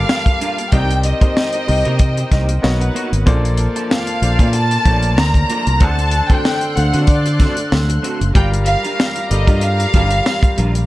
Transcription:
Already playing: grand piano G3 G4 A4 A#4 F5, string section F4 A5 D6, violin section F5
0.09 muted clean electric guitar stroke, snare
0.26 muted clean electric guitar stroke, kick, closed hi-hat
0.41 clean electric guitar A#3 D4 F4 A#4, closed hi-hat
0.58 muted clean electric guitar stroke, closed hi-hat
0.72 fingered electric bass C2, clean electric guitar A#3 D#4 G4 A#4, grand piano C4 G4 A#4 D5 D#5, string section D#4 C5 G5, violin section G5, kick, closed hi-hat
0.90 muted clean electric guitar stroke, closed hi-hat
1.03 violin section D#5, muted clean electric guitar stroke, closed hi-hat
1.21 clean electric guitar A#3 D#4 G4 A#4, grand piano C4 G4 A#4 C5 D#5, kick, closed hi-hat
1.36 muted clean electric guitar stroke, snare
1.53 muted clean electric guitar stroke, closed hi-hat
1.67 fingered electric bass C2, grand piano C4 G4 A#4 C5 D#5, open hi-hat
1.85 fingered electric bass C3, clean electric guitar A#3 D#4 G4 A#4, closed hi-hat
1.99 muted clean electric guitar stroke, kick, closed hi-hat
2.17 muted clean electric guitar stroke, closed hi-hat
2.31 fingered electric bass C2, clean electric guitar A#3 D#4 G4 A#4, kick, snare, closed hi-hat
2.49 muted clean electric guitar stroke, closed hi-hat
2.62 fingered electric bass B1, grand piano B3 F#4 A#4 C#5 D#5, string section D#4 B4 F#5, snare
2.80 muted clean electric guitar stroke, closed hi-hat
2.95 clean electric guitar A#3 D#4 F#4 A#4, closed hi-hat
3.12 fingered electric bass G#1, muted clean electric guitar stroke, closed hi-hat
3.26 fingered electric bass A#1, clean electric guitar F3 A#3 D4 A4, grand piano A#3 F4 A4 C5 D5, string section F4 D5 A5, kick, closed hi-hat
3.44 muted clean electric guitar stroke, closed hi-hat
3.57 muted clean electric guitar stroke, closed hi-hat
3.75 clean electric guitar F3 A#3 D4 A4, closed hi-hat
3.90 violin section F5, muted clean electric guitar stroke, snare
4.07 muted clean electric guitar stroke, closed hi-hat
4.22 fingered electric bass A#1, grand piano A#3 F4 A4 C5 D5, closed hi-hat
4.39 fingered electric bass A#2, clean electric guitar F3 A#3 D4 A4, grand piano A#3 F4 A4 C5 D5, kick, closed hi-hat
4.53 violin section A5, muted clean electric guitar stroke, closed hi-hat
4.71 muted clean electric guitar stroke, closed hi-hat
4.85 fingered electric bass A#1, clean electric guitar F3 A#3 D4 A4, grand piano A3 A#3 F4 C5 C#5, kick, closed hi-hat
4.93 grand piano D5
5.03 muted clean electric guitar stroke, closed hi-hat
5.18 fingered electric bass D2, violin section A#5, muted clean electric guitar stroke, snare
5.34 muted clean electric guitar stroke, kick, closed hi-hat
5.49 clean electric guitar F3 A#3 D4 A4, closed hi-hat
5.67 fingered electric bass C2, muted clean electric guitar stroke, closed hi-hat
5.80 fingered electric bass D2, grand piano D3 D4 A4 C5 F#5, clean electric guitar A3 C4 F#4 A4, string section A4 C6 F#6, violin section A5, kick, closed hi-hat
5.98 muted clean electric guitar stroke, closed hi-hat
6.11 muted clean electric guitar stroke, closed hi-hat
6.29 grand piano D3 D4 A4 C5 A5, clean electric guitar A3 C4 F#4 A4, violin section G5, kick, closed hi-hat
6.44 muted clean electric guitar stroke, snare
6.61 muted clean electric guitar stroke, closed hi-hat
6.75 fingered electric bass D2, grand piano D3 D4 A4 C5 F5, violin section F#5, closed hi-hat
6.83 grand piano F#5
6.93 fingered electric bass D3, clean electric guitar A3 C4 F#4 A4, closed hi-hat
7.07 violin section D5, muted clean electric guitar stroke, kick, closed hi-hat
7.25 muted clean electric guitar stroke, closed hi-hat
7.39 clean electric guitar A3 C4 F#4 A4, kick, snare, closed hi-hat
7.57 muted clean electric guitar stroke, closed hi-hat
7.72 fingered electric bass D2, snare
7.88 muted clean electric guitar stroke, closed hi-hat
8.02 clean electric guitar A3 C4 F#4 A4, closed hi-hat
8.20 fingered electric bass F#1, muted clean electric guitar stroke, closed hi-hat
8.34 fingered electric bass G1, clean electric guitar G3 D4 F4 A#4, grand piano G3 F4 G4 A#4 F5, string section G4 F5 A#5, violin section G5, kick, closed hi-hat
8.51 muted clean electric guitar stroke, closed hi-hat
8.66 violin section F5, muted clean electric guitar stroke, closed hi-hat
8.83 clean electric guitar G3 D4 F4 A#4, closed hi-hat
8.98 muted clean electric guitar stroke, snare
9.15 muted clean electric guitar stroke, closed hi-hat
9.30 fingered electric bass G1, grand piano G3 G4 A4 A#4 F5, violin section D#5, closed hi-hat
9.47 fingered electric bass G2, grand piano G3 F4 G4 A#4 F5, clean electric guitar G3 D4 F4 A#4, kick, closed hi-hat
9.61 violin section F5, muted clean electric guitar stroke, closed hi-hat
9.80 muted clean electric guitar stroke, closed hi-hat
9.93 fingered electric bass G1, clean electric guitar G3 D4 F4 A#4, grand piano G3 F4 G4 A#4 F5, kick, closed hi-hat
10.11 muted clean electric guitar stroke, closed hi-hat
10.26 muted clean electric guitar stroke, snare
10.42 muted clean electric guitar stroke, muted fingered electric bass stroke, kick, closed hi-hat
10.57 fingered electric bass A#1, clean electric guitar G3 D4 F4 A#4, closed hi-hat
10.74 muted clean electric guitar stroke, closed hi-hat

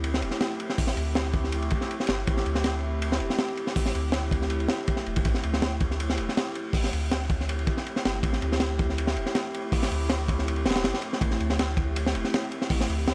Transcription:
Already playing: sub bass D2, ambient pad A3 C4 E4 G4
0.04 ride
0.14 snare
0.22 sub bass E1, ride
0.31 snare
0.41 snare, ride
0.60 ride
0.70 snare
0.78 sub bass A1, kick, open hi-hat
0.87 snare
0.96 sub bass D2, ride
1.06 ambient pad A3 C4 E4 G4
1.15 snare, ride
1.33 kick, ride
1.44 snare
1.52 ride
1.62 ride
1.70 kick, ride
1.81 snare
1.91 ride
2.00 snare
2.07 sub bass G1, snare, ride
2.27 sub bass A1, kick, ride
2.37 snare
2.46 sub bass D2, ride
2.55 ambient pad A3 C4 E4 G4, snare
2.64 snare, ride
3.02 ride
3.12 snare
3.20 sub bass E1, ride
3.30 snare
3.38 snare, ride
3.57 ride
3.67 snare
3.76 sub bass A1, kick, open hi-hat
3.86 snare
3.94 sub bass D2, ride
4.04 ambient pad A3 C4 E4 G4
4.12 snare, ride
4.31 kick, ride
4.42 snare
4.50 ride
4.60 ride
4.68 snare, ride
4.88 kick, ride
4.97 snare
5.06 sub bass E1, ride
5.16 sub bass E1, kick, ride
5.25 sub bass A1, kick, ride
5.34 snare
5.43 sub bass D2, ride
5.53 ambient pad A3 C4 E4 G4, snare
5.62 snare, ride
5.80 kick, ride
5.91 snare
6.00 ride
6.10 snare
6.17 sub bass E1, ride
6.29 snare
6.37 snare, ride
6.55 ride
6.73 sub bass A1, kick, open hi-hat
6.84 snare
6.93 sub bass D2, ride
7.02 ambient pad A3 C4 E4 G4
7.11 snare, ride
7.29 kick, ride
7.41 snare
7.49 ride
7.59 ride
7.67 kick, ride
7.77 snare
7.86 ride
7.96 snare
8.05 sub bass G1, snare, ride
8.23 sub bass A1, kick, ride
8.33 snare
8.42 sub bass D2, ride
8.52 ambient pad A3 C4 E4 G4, snare
8.60 snare, ride
8.79 kick, ride
8.90 snare
8.98 ride
9.07 snare
9.16 sub bass E1, ride
9.26 snare
9.35 snare, ride
9.54 ride
9.72 sub bass A1, kick, open hi-hat
9.83 snare
9.91 sub bass D2, ride
10.10 snare, ride
10.28 kick, ride
10.39 snare
10.48 ride
10.56 ride
10.65 sub bass E1, snare, ride
10.70 snare, ride
10.75 snare, ride
10.84 sub bass G1, snare, ride
10.94 snare
11.02 ride
11.13 snare
11.21 sub bass A1, kick, ride
11.31 snare
11.40 sub bass D2, ride
11.50 ambient pad A3 C4 E4 G4, snare
11.59 snare, ride
11.77 kick, ride
11.96 ride
12.06 snare
12.14 sub bass E1, ride
12.24 snare
12.34 snare, ride
12.52 ride
12.62 snare
12.70 sub bass A1, kick, open hi-hat
12.81 snare
12.89 sub bass D2, ride
12.99 ambient pad A3 C4 E4 G4
13.08 snare, ride

